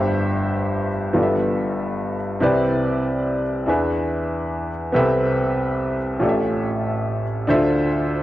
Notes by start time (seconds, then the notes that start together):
Already playing: G1 G2 G4 C5 E5
1.13 G1 G2 B3 F4 G4 A4 D5
1.23 E5
2.40 C2 C3 C4 E4 G4 B4 D5
3.66 E2 E3 D4 E4 G#4 B4 E5
4.92 C2 C3 B3 G4 A4 B4 E5
4.99 C4
6.20 A1 A2 C#4 F4 G4 A4 D5
6.29 E5
7.47 D2 D3 D4 E4 A4 C5 E5
7.54 F4